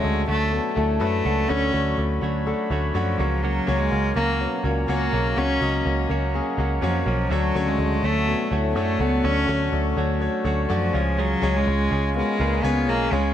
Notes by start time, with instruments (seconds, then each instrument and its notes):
Already playing: french horn section C#3 C#4, grand piano D3 A3 D4 F#4 C#5 E5, clean electric guitar F#3 A3 C#4 F#4, cello G#3, brass ensemble C#5 F#5 A5
0.04 picked electric bass D2, grand piano A3 D4 F#4 C#5
0.27 picked electric bass D2, clean electric guitar F#3 A3 C#4 F#4, grand piano A3 D4 F#4 C#5, cello A3
0.51 french horn section B2 B3, grand piano A3 D4 F#4 A4
0.75 picked electric bass D2, french horn section A2 A3, clean electric guitar F#3 A3 C#4 F#4, grand piano A3 D4 F#4 C#5
0.99 picked electric bass F#2, clean electric guitar F#3 A3 C#4 F#4, grand piano A3 D4 F#4 B4, cello A3
1.24 picked electric bass C#2, clean electric guitar F#3 A3 C#4 F#4, grand piano A3 D4 F#4 A4
1.49 picked electric bass D2, clean electric guitar D3 F#3 A3 C#4 F#4, grand piano D3 A3 D4 F#4 C#5, cello C#4, brass ensemble B5
1.73 picked electric bass D2, clean electric guitar F#3 A3 C#4 F#4, grand piano A3 D4 F#4 C#5
1.97 picked electric bass D2, grand piano A3 D4 F#4 D5
2.21 picked electric bass D2, clean electric guitar F#3 A3 C#4 F#4, grand piano A3 D4 F#4 C#5
2.46 grand piano A3 D4 F#4 A4
2.70 picked electric bass D2, clean electric guitar F#3 A3 C#4 F#4, grand piano A3 D4 F#4 C#5
2.94 picked electric bass F#2, cello F3, clean electric guitar F#3 A3 C#4 F#4, grand piano A3 D4 F#4 C#5
3.18 picked electric bass C#2, grand piano C#3 A#3 C#4 F#4 C#5, clean electric guitar F#3 A#3 C#4 F#4, brass ensemble A#4 A#5
3.42 clean electric guitar C#3 F#3 A#3 C#4 F#4, cello F#3
3.67 picked electric bass C#2, french horn section C#3 C#4, clean electric guitar F#3 A#3 C#4 F#4, grand piano A#3 C#4 F#4 C#5
3.78 cello G#3
3.91 picked electric bass C#2, grand piano A#3 C#4 F#4 C#5
4.15 picked electric bass C#2, clean electric guitar F#3 A#3 C#4 F#4, grand piano A#3 C#4 F#4 C#5, cello A#3
4.39 french horn section B2 B3, grand piano A#3 C#4 F#4 C#5
4.63 picked electric bass C#2, french horn section A#2 A#3, clean electric guitar F#3 A#3 C#4 F#4, grand piano A#3 C#4 F#4 C#5
4.87 picked electric bass C#2, clean electric guitar F#3 A#3 C#4 F#4, grand piano A#3 C#4 F#4 C#5, cello A#3
5.12 picked electric bass B1, grand piano C#3 A#3 C#4 F#4 C#5, clean electric guitar F#3 A#3 C#4 F#4, brass ensemble D#5
5.36 picked electric bass C#2, clean electric guitar C#3 F#3 A#3 C#4 F#4, grand piano A#3 C#4 F#4 C#5, cello C#4
5.60 picked electric bass C#2, clean electric guitar F#3 A#3 C#4 F#4, grand piano A#3 C#4 F#4 D#5
5.85 picked electric bass C#2, grand piano A#3 C#4 F#4 C#5
6.09 picked electric bass C#2, clean electric guitar F#3 A#3 C#4 F#4, grand piano A#3 C#4 F#4 C#5
6.34 grand piano A#3 C#4 F#4 G#4
6.57 picked electric bass C#2, clean electric guitar F#3 A#3 C#4 F#4, grand piano A#3 C#4 F#4 C#5
6.81 picked electric bass F2, cello F3, clean electric guitar F#3 A#3 C#4 F#4, grand piano A#3 C#4 F#4 C#5
7.06 picked electric bass B1, cello F3, clean electric guitar F#3 A#3 C#4 F#4, grand piano A#3 C#4 F#4 C#5
7.30 picked electric bass D2, clean electric guitar D3 F#3 A3 C#4 F#4, grand piano D3 A3 D4 F#4 C#5, cello F#3, brass ensemble F#4 C#5 F#5 A5
7.54 picked electric bass D2, french horn section C#3 C#4, clean electric guitar F#3 A3 C#4 F#4, grand piano A3 D4 F#4 C#5
7.67 cello G#3
7.79 picked electric bass D2, grand piano A3 D4 F#4 C#5
8.02 picked electric bass D2, clean electric guitar F#3 A3 C#4 F#4, grand piano A3 D4 F#4 C#5, cello A3
8.27 french horn section B2 B3, grand piano A3 D4 F#4 C#5
8.50 picked electric bass D2, french horn section A2 A3, clean electric guitar F#3 A3 C#4 F#4, grand piano A3 D4 F#4 C#5
8.70 cello B3
8.75 picked electric bass F#2, clean electric guitar F#3 A3 C#4 F#4, grand piano A3 D4 F#4 C#5, cello A3
8.99 picked electric bass C#2, clean electric guitar F#3 A3 C#4 F#4, grand piano A3 D4 F#4 A4, cello B3
9.23 picked electric bass D2, clean electric guitar D3 F#3 A3 C#4 F#4, grand piano D3 A3 D4 F#4 C#5, cello C#4
9.47 picked electric bass D2, clean electric guitar F#3 A3 C#4 F#4, grand piano A3 D4 F#4 C#5
9.72 picked electric bass D2, grand piano A3 D4 F#4 D5
9.96 picked electric bass D2, clean electric guitar F#3 A3 C#4 F#4, grand piano A3 D4 F#4 C#5
10.21 grand piano A3 D4 F#4 C#5
10.44 picked electric bass D2, clean electric guitar F#3 A3 C#4 F#4, grand piano A3 D4 F#4 C#5
10.69 picked electric bass F#2, cello F3, clean electric guitar F#3 A3 C#4 F#4, grand piano A3 D4 F#4 D5
10.93 picked electric bass C#2, grand piano C#3 G#3 C#4 F4 C#5, clean electric guitar G#3 C#4 F4 G#4, brass ensemble F4 G#4 G#5
11.18 clean electric guitar C#3 G#3 C#4 F4 G#4, cello F#3
11.42 picked electric bass C#2, french horn section C#3 C#4, clean electric guitar G#3 C#4 F4 G#4, grand piano G#3 C#4 F4 C#5
11.57 cello G#3
11.66 picked electric bass C#2, grand piano G#3 C#4 F4 C#5
11.90 picked electric bass C#2, clean electric guitar G#3 C#4 F4 G#4, grand piano G#3 C#4 F4 C#5
12.14 french horn section B2 B3, grand piano G#3 C#4 F4 A#4, cello G#3
12.39 picked electric bass C#2, french horn section A#2 A#3, clean electric guitar G#3 C#4 F4 G#4, grand piano G#3 C#4 F4 B4
12.63 picked electric bass C#2, clean electric guitar G#3 C#4 F4 G#4, grand piano G#3 C#4 F4 C#5, cello B3
12.87 picked electric bass B1, grand piano C#3 G#3 C#4 F4 D#5, clean electric guitar G#3 C#4 F4 G#4, cello A#3
13.12 picked electric bass C#2, clean electric guitar C#3 G#3 C#4 F4 G#4, grand piano G#3 C#4 F4 C#5, cello G#3